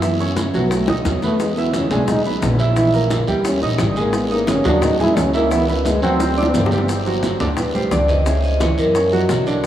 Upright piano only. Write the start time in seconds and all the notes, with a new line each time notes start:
0.03 E3 E4 E5
0.20 C#4 C#5 C#6
0.54 F#3 F#4 F#5
0.89 D#4 D#5 D#6
1.23 B3 B4 B5
1.58 E4 E5 E6
1.92 G#3 G#4 G#5
2.26 B3 B4 B5
2.59 E4 E5 E6
2.76 E3 E4 E5
2.94 A#3 A#4 A#5
3.27 G3 G4 G5
3.62 D#4 D#5 D#6
3.97 G#3 G#4 G#5
4.31 D#4 D#5 D#6
4.65 F#3 F#4 F#5
5.00 G#3 G#4 G#5
5.34 E4 E5 E6
5.51 E3 E4 E5
5.69 B3 B4 B5
6.03 F#3 F#4 F#5
6.37 D4 D5 D6
6.72 G3 G4 G5
7.06 F#3 F#4 F#5
7.40 D4 D5 D6
7.74 G3 G4 G5
7.91 D4 D5 D6
8.26 C#3 C#4 C#5
8.60 E3 E4 E5
8.95 C#4 C#5 C#6
9.12 F#3 F#4 F#5
9.47 D3 D4 D5